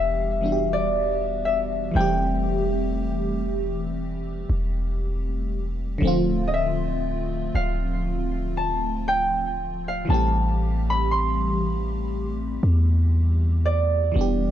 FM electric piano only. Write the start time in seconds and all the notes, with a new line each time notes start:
Already playing: E3 G3 B3 D4 G4
0.41 E3 G3 B3 D4
0.46 F#4
0.52 G4
1.91 E3 G3
1.96 A3 C4
2.01 G4
5.98 D3 F3
6.03 A3 C4
6.07 F4
10.05 E3 G3
10.10 A3 C4
10.14 G4
14.12 E3 G3
14.16 B3 D4
14.21 G4